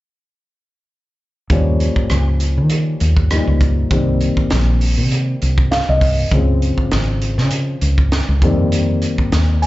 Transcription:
1.50 fretless electric bass D#2, grand piano F3 G3 A#3 C#4, kick, closed hi-hat
1.80 closed hi-hat
1.96 muted fretless electric bass stroke, kick
2.10 fretless electric bass C#2, cross-stick, closed hi-hat
2.40 closed hi-hat
2.57 fretless electric bass D#3
2.70 closed hi-hat
3.00 fretless electric bass D#2, closed hi-hat
3.17 kick
3.31 grand piano F3 G3 A#3 D#4, cross-stick, closed hi-hat
3.47 fretless electric bass C#2
3.61 kick, closed hi-hat
3.91 fretless electric bass C2, grand piano D#3 G3 A#3 C4, kick, closed hi-hat
4.21 closed hi-hat
4.37 muted fretless electric bass stroke, kick
4.50 fretless electric bass A#1, snare, closed hi-hat
4.81 open hi-hat
4.98 fretless electric bass C3
5.11 closed hi-hat
5.42 fretless electric bass C2, closed hi-hat
5.58 kick
5.71 grand piano F5, snare, closed hi-hat
5.89 fretless electric bass C2, grand piano D#5
6.01 kick, open hi-hat
6.32 fretless electric bass C#2, grand piano C#3 F3 G#3 C4, kick, closed hi-hat
6.62 closed hi-hat
6.78 muted fretless electric bass stroke, kick
6.91 fretless electric bass G#1, snare, closed hi-hat
7.22 closed hi-hat
7.38 fretless electric bass C#3, snare
7.51 closed hi-hat
7.81 fretless electric bass C#2, closed hi-hat
7.98 kick
8.12 snare, closed hi-hat
8.29 fretless electric bass C#2
8.42 fretless electric bass F2, grand piano D#3 G3 A#3 C4, kick, closed hi-hat
8.72 closed hi-hat
9.02 closed hi-hat
9.18 muted fretless electric bass stroke, kick
9.32 fretless electric bass D#2, snare, closed hi-hat
9.62 grand piano G#5, open hi-hat

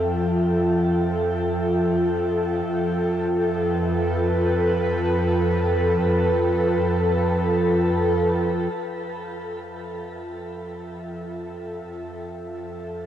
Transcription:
Already playing: cello section F2, analog synth pad F3 F4 A4 E5 G5
2.64 cello section F2, analog synth pad F3
3.52 analog synth pad B4
8.74 cello section F2
9.13 analog synth pad F4 E5
9.38 analog synth pad G5

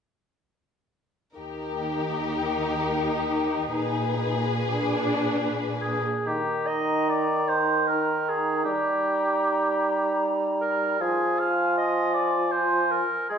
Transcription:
1.35 cello section D#2, viola section D#4, violin section G4 A#4
3.75 cello section A#2, violin section G#4 B4
4.53 viola section D4
5.81 oboe G#4
6.25 bassoon D#3, clarinet D#4, oboe G4, flute A#5
6.67 oboe D#5
7.09 oboe D5
7.49 oboe C5
7.87 clarinet D#4, oboe A#4, flute A#5
8.28 oboe G#4
8.64 bassoon G3, clarinet D#4, oboe G4, flute A#5
10.61 oboe A#4
10.99 bassoon F3, clarinet F4, oboe G#4, flute G#5
11.39 oboe F5
11.78 oboe D#5
12.14 oboe D5
12.52 clarinet F4, oboe C5, flute G#5
12.91 oboe A#4
13.29 bassoon G#3, clarinet F4, oboe G#4, flute G#5

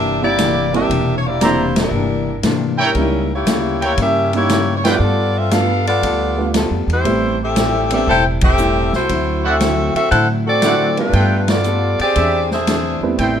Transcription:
Already playing: upright bass G1, hollow-body jazz guitar C3 E3 A#3 D4, saxophone section D4 G4 A#4 E5
0.22 grand piano G3 A#3 C4 D4 E4, saxophone section A#3 E4 G4 D5
0.37 hollow-body jazz guitar C3 E3 A#3 D4, snare, hi-hat pedal, ride
0.73 grand piano G3 A#3 C4 D4 E4, saxophone section D4 G4 A#4 E5, ride
0.89 upright bass E1, hollow-body jazz guitar C3 E3 A#3 D4, kick, ride
1.16 saxophone section C#5
1.27 saxophone section A#3 E4 G4 D5
1.40 hollow-body jazz guitar C3 E3 A#3 D4, grand piano G3 A#3 C4 D4 E4, saxophone section A#3 E4 G4, trumpet section E4 C5 D5 A#5, snare, hi-hat pedal, ride
1.44 saxophone section C5
1.76 saxophone section G3 D4 E4, snare, ride
1.80 saxophone section A#4
1.91 upright bass G1, hollow-body jazz guitar C3 E3 A#3
1.95 hollow-body jazz guitar D4
2.43 upright bass G#2, hollow-body jazz guitar C3 E3 A#3 D4, snare, hi-hat pedal, ride
2.78 trumpet section E4 A#4 C#5 G5
2.84 saxophone section G3 C#4 E4 A#4
2.95 upright bass C#2, hollow-body jazz guitar C#3 G3 A#3, grand piano G3 A#3 C#4 D#4 E4, kick, ride
2.99 hollow-body jazz guitar E4
3.35 saxophone section A#3 E4 G4 C#5
3.45 upright bass D2, hollow-body jazz guitar C#3 G3 A#3 E4, snare, hi-hat pedal, ride
3.81 trumpet section E4 A#4 C#5 G5, ride
3.86 saxophone section A#3 E4 G4 C#5
3.97 upright bass G2, hollow-body jazz guitar C#3 G3 A#3 E4, kick, ride
4.02 saxophone section C#4 G4 A#4 E5
4.33 grand piano G3 A#3 C#4 D#4 G4, saxophone section E4 G4 C#5, ride
4.37 saxophone section A#3
4.49 hollow-body jazz guitar C#3 G3 A#3 E4, snare, hi-hat pedal, ride
4.77 saxophone section C#5
4.84 grand piano G3 A3 B3 D4 E4, saxophone section B3 F4 A4 D5, trumpet section F4 A4 B4 G5, snare, ride
5.00 upright bass G2, hollow-body jazz guitar G3 B3 F4
5.04 hollow-body jazz guitar A4
5.37 saxophone section C4 F4 A4 E5
5.50 hollow-body jazz guitar G3 B3 F4 A4, grand piano G3 A3 B3 D4 F4, saxophone section D4 A4 B4 F5, snare, hi-hat pedal, ride
5.87 saxophone section B3 F4 A4 D5, ride
6.02 upright bass D2, hollow-body jazz guitar G3 B3 F4 A4, kick, ride
6.37 grand piano G3 A3 B3 D4 F4
6.54 hollow-body jazz guitar G3 B3 F4 A4, snare, hi-hat pedal, ride
6.71 upright bass F2
6.88 upright bass E2, ride
6.93 saxophone section A3 E4 G4 C5
7.05 upright bass A1, hollow-body jazz guitar A2 G3 C4 E4, grand piano G3 A3 B3 C4 E4, kick, ride
7.43 saxophone section C4 G4 A4 E5
7.56 hollow-body jazz guitar A2 G3 C4 E4, snare, hi-hat pedal, ride
7.90 grand piano G3 A3 B3 C4 D4, saxophone section G4 A4 E5, ride
7.94 saxophone section C4
8.07 upright bass E1, hollow-body jazz guitar A2 G3 C4 E4, saxophone section E4 A4 C5 G5, kick
8.41 saxophone section C4 G4 A4 E5, kick, ride
8.57 hollow-body jazz guitar A2 G3 C4 E4, hi-hat pedal
8.93 upright bass C2, saxophone section A3 E4 F#4 C5, snare
9.09 upright bass D2, hollow-body jazz guitar D3 F#3 C4 E4, kick, ride
9.44 saxophone section C4 F#4 A4 E5, trumpet section E4 C5 D5 F#5
9.60 hollow-body jazz guitar D3 F#3 C4 E4, snare, hi-hat pedal, ride
9.95 saxophone section C4 F#4 A4 E5, muted upright bass stroke, ride
10.11 upright bass A2, hollow-body jazz guitar D3 F#3 C4 E4, saxophone section E4 A4 C5 F#5, kick, ride
10.47 saxophone section C4 F#4 A4 D5
10.62 hollow-body jazz guitar D3 F#3 C4 E4, trumpet section E4 C5 D5 F#5, snare, hi-hat pedal, ride
10.97 grand piano G3 A3 B3 D4 F4, saxophone section A3 D4 F4 B4, ride
11.13 upright bass G2, hollow-body jazz guitar G3 B3 F4, trumpet section F4 A4 B4 G5, kick, ride
11.17 hollow-body jazz guitar A4
11.48 saxophone section B3 F4 A4 D5, snare, ride
11.63 hollow-body jazz guitar G3 B3 F4, hi-hat pedal
11.68 hollow-body jazz guitar A4
11.99 saxophone section C4 G4 G#4 D5, muted upright bass stroke, ride
12.15 upright bass E2, hollow-body jazz guitar E3 C4 D4, trumpet section E4 C5 D5 E5, kick, ride
12.20 hollow-body jazz guitar G#4
12.51 saxophone section D4 G#4 C5 E5, snare
12.67 hollow-body jazz guitar E3 C4 D4 G#4, snare, hi-hat pedal, ride
13.01 upright bass E2, grand piano G3 A3 B3 C4 E4
13.18 upright bass A1, hollow-body jazz guitar A2 G3 C4 E4, trumpet section E4 A4 C5 G5, kick, ride

